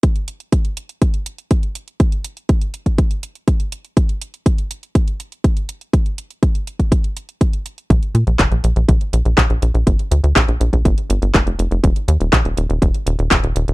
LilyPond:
<<
  \new Staff \with { instrumentName = "Analog synth bass" } { \clef bass \time 4/4 \key g \minor \tempo 4 = 122 r1 | r1 | r1 | r1 |
bes,,16 r16 bes,16 bes,,16 f,,16 bes,,16 bes,,16 bes,,16 bes,,16 r16 bes,,16 bes,,16 bes,,16 bes,,16 bes,,16 bes,,16 | g,,16 r16 d,16 d,16 bes,,16 bes,,16 bes,,16 bes,,16 g,,16 r16 g,,16 g,,16 f,,16 f,,16 f,,16 f,,16 | ees,,16 r16 ees,16 ees,,16 bes,,16 ees,,16 ees,,16 ees,,16 ees,,16 r16 ees,,16 ees,,16 ees,,16 ees,,16 ees,,16 ees,,16 | }
  \new DrumStaff \with { instrumentName = "Drums" } \drummode { \time 4/4 <hh bd>16 hh16 hh16 hh16 <hh bd>16 hh16 hh16 hh16 <hh bd>16 hh16 hh16 hh16 <hh bd>16 hh16 hh16 hh16 | <hh bd>16 hh16 hh16 hh16 <hh bd>16 hh16 hh16 <hh bd>16 <hh bd>16 hh16 hh16 hh16 <hh bd>16 hh16 hh16 hh16 | <hh bd>16 hh16 hh16 hh16 <hh bd>16 hh16 hh16 hh16 <hh bd>16 hh16 hh16 hh16 <hh bd>16 hh16 hh16 hh16 | <hh bd>16 hh16 hh16 hh16 <hh bd>16 hh16 hh16 <hh bd>16 <hh bd>16 hh16 hh16 hh16 <hh bd>16 hh16 hh16 hh16 |
<hh bd>16 hh16 hh16 hh16 <hc hh bd>16 hh16 hh16 hh16 <hh bd>16 hh16 hh16 hh16 <hc hh bd>16 hh16 hh16 hh16 | <hh bd>16 hh16 hh16 hh16 <hc hh bd>16 hh16 hh16 <hh bd>16 <hh bd>16 hh16 hh16 hh16 <hc hh bd>16 hh16 hh16 hh16 | <hh bd>16 hh16 hh16 hh16 <hc hh bd>16 hh16 hh16 hh16 <hh bd>16 hh16 hh16 hh16 <hc hh bd>16 hh16 hh16 hh16 | }
>>